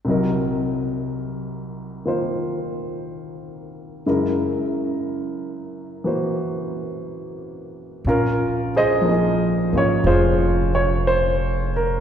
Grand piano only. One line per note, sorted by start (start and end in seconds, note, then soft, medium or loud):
0.05 4.05 C2 soft
0.05 4.05 C3 soft
0.05 4.06 F#3 soft
0.09 4.07 D#4 soft
0.09 4.07 A#4 soft
2.05 4.04 D#3 soft
2.05 4.05 A#3 soft
2.05 4.05 F4 soft
2.05 4.06 C5 soft
4.06 8.05 F#2 soft
4.06 8.05 C#3 soft
4.06 8.06 G#3 soft
4.06 8.05 E4 soft
4.06 8.06 A#4 soft
6.04 8.05 E3 soft
6.04 8.05 A#3 soft
6.04 8.06 F#4 soft
6.04 8.06 C5 soft
8.07 9.73 C#4 soft
8.07 9.74 F4 soft
8.07 8.71 A#4 medium
8.76 9.10 G#4 medium
8.76 10.05 C5 medium
8.76 9.79 D#5 medium
9.01 12.00 F3 soft
9.01 9.71 A#3 soft
9.09 12.00 D#4 soft
9.09 10.05 G#4 soft
9.73 12.00 A#3 soft
9.73 12.00 C#4 soft
9.73 10.05 F4 soft
9.78 10.08 C#5 medium
10.07 12.00 F4 medium
10.07 12.00 G#4 medium
10.07 10.71 C5 medium
10.75 11.04 C#5 medium
11.07 11.71 C5 medium
11.76 12.00 A#4 medium